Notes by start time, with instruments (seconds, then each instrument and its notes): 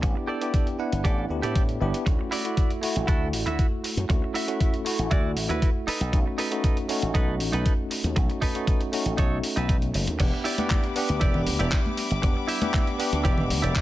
0.02 slap bass A1, tine electric piano B3 D4 E4 G4, muted clean electric guitar stroke, kick, closed hi-hat
0.15 muted clean electric guitar stroke
0.27 clean electric guitar G4 A4 D5
0.41 tine electric piano B3 D4 E4 G4, closed hi-hat
0.54 kick, closed hi-hat
0.67 closed hi-hat
0.79 tine electric piano B3 D4 E4 F#5
0.92 slap bass G1, closed hi-hat
1.04 slap bass A1, clean electric guitar G4 A4 D5, kick, closed hi-hat
1.30 slap bass D2, tine electric piano B3 D4 E4 G4
1.42 slap bass A2, tine electric piano B3 D4 E4 G4, clean electric guitar G4 A4 D5, closed hi-hat
1.56 kick, closed hi-hat
1.69 closed hi-hat
1.80 slap bass G1, tine electric piano B3 D4 E4 G4, muted clean electric guitar stroke
1.94 closed hi-hat
2.06 slap bass D2, tine electric piano C#4 E4 F#4, muted clean electric guitar stroke, kick, closed hi-hat
2.19 muted clean electric guitar stroke
2.31 clean electric guitar E4 F#4 D5, open hi-hat
2.45 tine electric piano A3 E4 F#4, closed hi-hat
2.57 kick, closed hi-hat
2.70 closed hi-hat
2.82 tine electric piano A3 E4 F#4, open hi-hat
2.96 slap bass A1, closed hi-hat
3.07 slap bass D2, clean electric guitar E4 F#4 A4, kick, closed hi-hat
3.33 slap bass A1, open hi-hat
3.46 slap bass D2, clean electric guitar E4 F#4 E5, closed hi-hat
3.59 kick, closed hi-hat
3.84 muted clean electric guitar stroke, open hi-hat
3.97 slap bass F#2, closed hi-hat
4.09 slap bass D2, tine electric piano A3 C#4 E4 F#4, muted clean electric guitar stroke, kick, closed hi-hat
4.22 muted clean electric guitar stroke
4.34 clean electric guitar E4 F#4 E5, open hi-hat
4.47 tine electric piano A3 C#4 E4 F#4, closed hi-hat
4.60 kick, closed hi-hat
4.74 closed hi-hat
4.84 tine electric piano A3 E4 F#4, open hi-hat
4.99 slap bass A1, closed hi-hat
5.11 slap bass D2, clean electric guitar E4 F#4 D5, kick, closed hi-hat
5.37 slap bass A1, open hi-hat
5.49 slap bass D2, clean electric guitar E4 F#4 B4, closed hi-hat
5.62 kick, closed hi-hat
5.87 clean electric guitar D#4 A4 B4, muted slap bass stroke, open hi-hat
6.01 slap bass B1, closed hi-hat
6.12 slap bass B1, tine electric piano A3 C#4 D#4 F#4, kick, closed hi-hat
6.26 muted clean electric guitar stroke
6.38 clean electric guitar D#4 A4 B4, open hi-hat
6.51 tine electric piano A3 C#4 D#4 F#4, closed hi-hat
6.64 kick, closed hi-hat
6.77 closed hi-hat
6.88 tine electric piano A3 C#4 D#4 F#4, open hi-hat
7.02 slap bass A1, closed hi-hat
7.14 slap bass B1, clean electric guitar D#4 A4 B4, kick, closed hi-hat
7.40 slap bass A1, open hi-hat
7.52 slap bass B1, clean electric guitar D#4 A4 B4, closed hi-hat
7.66 kick, closed hi-hat
7.91 muted clean electric guitar stroke, open hi-hat
8.04 slap bass D#2, closed hi-hat
8.16 slap bass B1, tine electric piano A3 C#4 D#4 F#4, muted clean electric guitar stroke, kick, closed hi-hat
8.29 muted clean electric guitar stroke, closed hi-hat
8.41 clean electric guitar D#4 A4 B4, kick, open hi-hat
8.55 tine electric piano A3 C#4 D#4 F#4, closed hi-hat
8.67 kick, closed hi-hat
8.81 closed hi-hat
8.92 tine electric piano A3 C#4 D#4 F#4, open hi-hat
9.05 slap bass A1, closed hi-hat
9.17 slap bass B1, clean electric guitar D#4 A4 C#5, kick, closed hi-hat
9.44 open hi-hat
9.56 slap bass B1, clean electric guitar D#4 A4 B4, closed hi-hat
9.69 kick, closed hi-hat
9.82 closed hi-hat
9.94 slap bass F#1, muted clean electric guitar stroke, open hi-hat
10.07 slap bass D#2, closed hi-hat
10.19 slap bass E1, string section G3 E5 B5 D6, tine electric piano B3 D4 G4 F#5, muted clean electric guitar stroke, kick, closed hi-hat, crash
10.32 muted clean electric guitar stroke
10.44 clean electric guitar E4 G4 D5, open hi-hat
10.58 tine electric piano B3 D4 G4 F#5, closed hi-hat, high conga
10.70 kick, clap, closed hi-hat
10.84 closed hi-hat
10.95 tine electric piano B3 D4 G4 F#5, open hi-hat
11.09 slap bass D2, closed hi-hat
11.20 slap bass E1, clean electric guitar E4 G4 D5, kick, closed hi-hat
11.34 low conga
11.47 slap bass D2, open hi-hat
11.59 slap bass E1, clean electric guitar E4 G4 D5, closed hi-hat
11.72 kick, clap, closed hi-hat
11.86 high conga
11.97 muted clean electric guitar stroke, open hi-hat
12.11 slap bass G1, closed hi-hat
12.22 slap bass E1, tine electric piano B3 D4 G4 F#5, muted clean electric guitar stroke, kick, closed hi-hat
12.35 muted clean electric guitar stroke
12.48 clean electric guitar E4 G4 E5, open hi-hat
12.61 tine electric piano B3 D4 G4 F#5, closed hi-hat, high conga
12.74 kick, clap, closed hi-hat
12.87 closed hi-hat
12.98 tine electric piano B3 D4 G4 F#5, open hi-hat
13.13 slap bass D2, closed hi-hat
13.24 slap bass E1, clean electric guitar E4 G4 D5, kick, closed hi-hat
13.38 low conga
13.50 slap bass D2, open hi-hat
13.62 slap bass E1, clean electric guitar E4 G4 D5, closed hi-hat
13.75 kick, clap, closed hi-hat